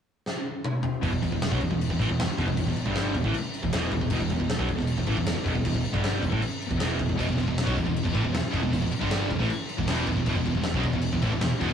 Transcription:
0.26 snare
0.64 mid tom
0.83 floor tom
1.02 E1 E2 B2, kick, crash
1.12 E1 E2 B2, kick
1.22 E1 E2 B2, kick, crash
1.32 E1 E2 B2, kick
1.42 snare, crash
1.51 B1 B2 F#3, kick
1.60 E1 E2 B2, kick, crash
1.71 E1 E2 B2, kick
1.81 crash
1.90 E1 E2 B2, kick
1.99 A1 A2 E3, kick, crash
2.09 E1 E2 B2, kick
2.19 E1 E2 B2, snare, crash
2.29 muted distorted electric guitar stroke, muted overdriven electric guitar stroke
2.38 E1 E2 B2, kick, crash
2.48 E1 E2 B2, kick
2.57 E1 E2 B2, kick, crash
2.67 E1 E2 B2, kick
2.76 muted picked electric bass stroke, muted distorted electric guitar stroke, muted overdriven electric guitar stroke, crash
2.86 G1 G2 D3 G3, kick
2.95 snare, crash
3.14 E1 E2 B2, kick, crash
3.24 A1 A2 E3, kick
3.34 crash
3.54 crash
3.63 E1 E2 B2, kick
3.73 E1 E2 B2 E3, snare, crash
3.91 E1 E2 B2, kick, crash
4.01 E1 E2 B2, kick
4.10 E1 E2 B2, kick, crash
4.21 E1 E2 B2, kick
4.30 E1 E2 B2, kick, crash
4.40 E1 E2 B2, kick
4.49 snare, crash
4.59 B1 B2 F#3, kick
4.69 E1 E2 B2, kick, crash
4.78 E1 E2 B2, kick, snare
4.87 crash
4.98 E1 E2 B2, kick
5.07 A1 A2 E3, kick, crash
5.17 E1 E2 B2, kick
5.25 E1 E2 B2, snare, crash
5.35 muted overdriven electric guitar stroke, muted distorted electric guitar stroke
5.44 E1 E2 B2, kick, crash
5.53 E1 E2 B2, kick
5.64 E1 E2 B2, kick, crash
5.73 E1 E2 B2, kick
5.82 muted overdriven electric guitar stroke, muted distorted electric guitar stroke, crash
5.86 muted picked electric bass stroke
5.92 G1 G2 D3 G3, kick
6.04 snare, crash
6.20 E1 E2 B2, kick, crash
6.29 A1 A2 E3, kick
6.42 crash
6.62 crash
6.67 E2 B2, kick
6.71 E1 E2 B2
6.76 E2 B2 E3
6.80 E1 E2 B2 E3, snare, crash
6.96 E2 B2, kick, crash
7.00 E1 E2 B2
7.05 E1 E2 B2, kick
7.10 E2
7.14 E2 B2
7.19 E1 E2 B2, kick, crash
7.24 E2 B2
7.29 E1, kick
7.33 E2 B2
7.38 E1 E2 B2, kick, crash
7.44 E1 E2 B2, kick
7.58 snare, crash
7.63 B2 F#3
7.67 B1, kick
7.74 E1 E2 B2, kick, crash
7.84 E1 E2 B2, kick
7.96 crash
8.04 E1 E2 B2, kick
8.12 A1 A2 E3, kick, crash
8.22 E1 E2 B2, kick
8.32 E1 E2 B2, snare, crash
8.43 muted overdriven electric guitar stroke, muted distorted electric guitar stroke, muted picked electric bass stroke
8.52 E1 E2 B2, kick, crash
8.62 E1 E2 B2, kick
8.72 E1 E2 B2, kick, crash
8.80 E1 E2 B2, kick
8.90 muted overdriven electric guitar stroke, muted distorted electric guitar stroke, muted picked electric bass stroke, crash
8.99 G1 G2 D3 G3, kick
9.11 snare, crash
9.28 E1 E2 B2, kick, crash
9.39 A1 A2 E3, kick, snare
9.50 crash
9.69 crash
9.77 E1 E2 B2, kick
9.87 E1 E2 B2 E3, snare, crash
10.07 E1 E2 B2, kick, crash
10.17 E1 E2 B2, kick
10.26 E1 E2 B2, kick, crash
10.35 E1 E2 B2, kick
10.45 E1 E2 B2, kick, crash
10.55 E1 E2 B2, kick
10.63 snare, crash
10.74 B1 B2 F#3, kick
10.83 E1 E2 B2, kick, crash
10.93 E1 E2 B2, kick
11.02 crash
11.13 E1 E2 B2, kick
11.21 A1 A2 E3, kick, crash
11.31 E1 E2 B2, kick
11.40 E1 E2 B2, snare, crash
11.51 muted overdriven electric guitar stroke, muted distorted electric guitar stroke, muted picked electric bass stroke
11.59 E1 E2 B2, kick, crash
11.70 E2

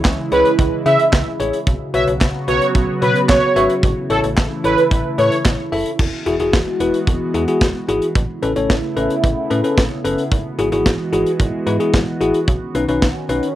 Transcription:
Already playing: C#3 E3 G#3 E4
0.05 C#2, kick, snare, clap, closed hi-hat
0.32 C#2 E4 G#4 B4 C#5, closed hi-hat
0.45 closed hi-hat
0.59 C#2, kick, closed hi-hat
0.86 C#3 E4 G#4 E5, closed hi-hat
0.99 closed hi-hat
1.13 C#2, kick, snare, clap, closed hi-hat
1.40 A1 E4 G#4 C#5, closed hi-hat
1.53 closed hi-hat
1.67 B1 C#3 F#3 B3 F#4, kick, closed hi-hat
1.94 B1 F#4 B4 C#5 E5, closed hi-hat
2.07 B1, closed hi-hat
2.21 B1, kick, snare, clap, closed hi-hat
2.48 B1 F#4 B4 C#5, closed hi-hat
2.62 closed hi-hat
2.75 B1, kick, closed hi-hat
3.02 B2 F#4 B4 C#5, closed hi-hat
3.15 closed hi-hat
3.29 B1 C#5, kick, snare, clap, closed hi-hat
3.56 G#1 F#4 B4 E5, closed hi-hat
3.70 closed hi-hat
3.83 A1 E3 A3 E4, kick, closed hi-hat
4.10 A1 E4 A4 C#5, closed hi-hat
4.23 A1, closed hi-hat
4.37 A1, kick, snare, clap, closed hi-hat
4.64 A1 E4 A4 B4 C#5, closed hi-hat
4.78 closed hi-hat
4.91 A1, kick, closed hi-hat
5.18 A2 E4 A4 B4 C#5, closed hi-hat
5.32 closed hi-hat
5.45 A1, kick, snare, clap, closed hi-hat
5.72 F#1 E4 A4 E5, open hi-hat
5.86 closed hi-hat
5.99 E1 E3 G#3 B3 F#4, kick, crash
6.26 E1 E4 F#4 G#4, closed hi-hat
6.40 E1 E4 F#4 G#4, closed hi-hat
6.53 E1, kick, snare, closed hi-hat
6.80 E1 E4 F#4 B4, closed hi-hat
6.94 closed hi-hat
7.07 E1, kick, closed hi-hat
7.34 E2 E4 F#4 G#4, closed hi-hat
7.48 E4 F#4 G#4, closed hi-hat
7.61 E1, kick, snare, closed hi-hat
7.88 G#1 E4 F#4 G#4, closed hi-hat
8.02 closed hi-hat
8.15 A1 C#3 A3 B3 E4, kick, closed hi-hat
8.42 A1 C#4 A4 B4, closed hi-hat
8.56 A1 C#4 A4 C#5, closed hi-hat
8.70 A1, kick, snare, closed hi-hat
8.96 A1 C#4 A4 B4, closed hi-hat
9.10 closed hi-hat
9.24 A1, kick, closed hi-hat
9.50 A2 C#4 A4 B4, closed hi-hat
9.64 C#4 A4 B4, closed hi-hat
9.77 A1, kick, snare, closed hi-hat
10.05 F#1 C#4 A4 B4, closed hi-hat
10.18 closed hi-hat
10.32 G#1 E3 G#3 F#4, kick, closed hi-hat
10.59 G#1 E4 F#4 G#4, closed hi-hat
10.72 G#1 E4 F#4 G#4, closed hi-hat
10.86 G#1, kick, snare, closed hi-hat
11.13 G#1 E4 F#4 G#4, closed hi-hat
11.26 closed hi-hat
11.40 G#1, kick, closed hi-hat
11.67 G#2 E4 F#4 B4, closed hi-hat
11.80 E4 F#4 G#4, closed hi-hat
11.94 G#1, kick, snare, closed hi-hat
12.21 A1 E4 F#4 G#4, closed hi-hat
12.34 closed hi-hat
12.48 B1 D#3 C#4, kick, closed hi-hat
12.75 B1 C#4 D#4 B4, closed hi-hat
12.88 B1 C#4 D#4 B4, closed hi-hat
13.02 B1, kick, snare, closed hi-hat
13.29 B1 C#4 D#4 B4, closed hi-hat
13.43 closed hi-hat

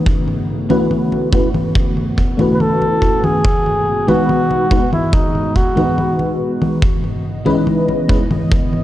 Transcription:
Already playing: C#3 A3 B3
0.06 F#4, kick, high conga
0.28 high conga
0.69 A3 C#4 E4 F#4 B4, high conga
0.91 high conga
1.12 high conga
1.32 A3 C#4 E4 F#4 B4, kick
1.54 high conga
1.75 kick, high conga
1.97 high conga
2.18 kick
2.37 A3 C#4 E4 F#4 B4, high conga
2.54 B4
2.60 A4, high conga
2.82 high conga
3.02 kick
3.24 G#4, high conga
3.44 B2 G#3, kick, high conga
3.66 high conga
4.07 G#3 B3 D#4 F#4 B4, high conga
4.29 high conga
4.51 high conga
4.71 G#3 B3 D#4 F#4 B4, kick
4.93 E4, high conga
5.13 D#4, kick, high conga
5.35 high conga
5.56 F#4, kick
5.75 G#3 B3 D#4 F#4 B4, high conga
5.98 high conga
6.19 high conga
6.62 high conga
6.82 C#3 E3 B3 D#5, kick, high conga
7.04 high conga
7.45 G#3 C#4 D#4 E4 B4, high conga
7.67 high conga
7.88 high conga
8.08 G#3 C#4 D#4 E4 B4, kick
8.31 high conga
8.51 kick, high conga
8.73 high conga

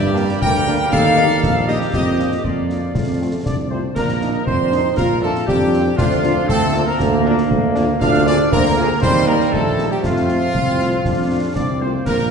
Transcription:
Already playing: G2 G3 A#3 G4 D5
0.15 A#3 D4, snare
0.29 snare
0.41 D2 A#4 G5, concert bass drum
0.67 A#3 D4, snare
0.92 D#2 A4 F5, concert bass drum, snare
1.16 A#3 D#4 G4, snare
1.31 snare
1.43 A#1, concert bass drum, snare
1.67 A#3 D#4 G4 D#5, snare
1.81 snare
1.93 F2 F3 A#3 G4 D#5, concert bass drum, snare, crash
2.19 A#3 D4 F4, snare
2.32 snare
2.43 F2 F4 D5, concert bass drum
2.69 A#3 D4 F4, snare
2.94 F2 A3, concert bass drum, snare
3.20 A3 C4 F4
3.44 C2 D4 D5 D6, concert bass drum, snare
3.70 A3 C4 F4 C5 C6
3.95 A#1 A#3 D4 A#4 A#5, concert bass drum, snare, crash
4.09 snare
4.21 A#3 D4 D#4 F4, snare
4.45 F2 C4 D4 C5 C6, concert bass drum
4.71 A#3 D4 D#4 F4, snare
4.97 A#1 A#3 F4 A#4 A#5, concert bass drum, snare
5.21 A3 A#3 D4 F4 A4 A5
5.35 snare
5.46 F2 G3 D4 G4 G5, concert bass drum
5.72 A#3 C4 D4 F4, snare
5.97 D2 F3 D4 F4 F5, concert bass drum, snare, crash
6.11 snare
6.23 A#3 D4 F4, snare
6.47 D2 A3 C4 A4 A5, concert bass drum
6.73 A#3 D4 F4, snare
6.86 A#3 A#4 A#5
6.99 D2 A#3, concert bass drum, snare
7.25 A#3 D4 F4
7.38 snare
7.50 D2, concert bass drum
7.75 A#3 D4 F4, snare
8.00 D2 D4 F4 F5 F6, concert bass drum, snare, crash
8.14 snare
8.26 A#3 D4 F4 G#4 D5 D6, snare
8.51 D2 A#3 C4 A#4 A#5, concert bass drum
8.77 A#3 F4 G#4, snare
9.01 D#2 G3 C4 C5 C6, concert bass drum, snare
9.27 A#3 D#4 G4 A#4 A#5
9.41 snare
9.53 A#1 A3 A4 A5, concert bass drum
9.77 A#3 D#4 G4, snare
9.90 G3 G4 G5
10.02 F2 F3 A3 F4 F5, concert bass drum, snare, crash
10.16 snare
10.29 A3 C4 F4, snare
10.54 C2 C4, concert bass drum
10.79 A3 C4 F4, snare
11.04 F2 D4, concert bass drum, snare
11.30 A3 C4 F4
11.55 C2 C4 D4 D5 D6, concert bass drum, snare
11.80 A3 A#3 C4 F4 C5 C6
12.05 A#1 A#3 A#4 A#5, concert bass drum, snare, crash
12.19 snare

